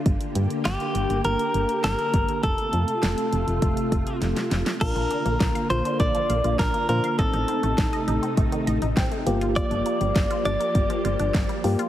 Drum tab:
CC |----------------|----------------|x---------------|----------------|
HH |xxxxxxxxxxxxxxxx|xxxxxxxxxxxxxxxx|xxxxxxxxxxxxxxxx|xxxxxxxxxxxxxxxx|
SD |----o-------o---|----o-------oooo|----o-------o---|----o-------o---|
BD |o-------------o-|o-------o-o-----|o---o---o---o---|o---o---o---o---|

CC |----------------|
HH |xxxxxxxxxxxxxxox|
SD |----o-------o---|
BD |o---o---o---o---|